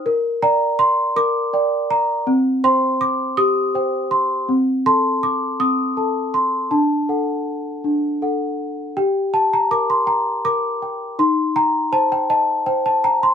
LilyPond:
\new Staff \with { instrumentName = "Celesta" } { \time 6/8 \key g \minor \tempo 4. = 54 << { r8 bes''8 c'''8 d'''4 bes''8 | r8 c'''8 d'''8 ees'''4 c'''8 | r8 c'''8 d'''8 ees'''4 c'''8 | a''4. r4. |
g''8 a''16 bes''16 d'''16 c'''16 bes''8 d'''4 | c'''8 bes''8 a''16 g''16 a''8 g''16 a''16 bes''16 c'''16 | } \\ { bes'8 <d'' g''>4 bes'8 <d'' g''>4 | c'8 <c'' g''>4 g'8 <c'' g''>4 | c'8 <a' a''>4 c'8 <a' a''>4 | d'8 <a' fis''>4 d'8 <a' fis''>4 |
g'8 g''8 bes'8 g''8 bes'8 g''8 | ees'8 g''8 c''8 ees''8 c''8 g''8 | } >> }